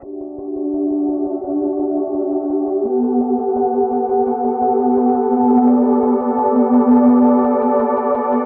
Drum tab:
HH |x-x-x-x-x-x-x-x-|x-x-x-x-x-x-x-x-|x-x-x-x-x-x-x-x-|x-x-x-x-x-x-x-xx|

HH |x-x-x-x-x-x-x-x-|x-x-x-x-x-x-x-x-|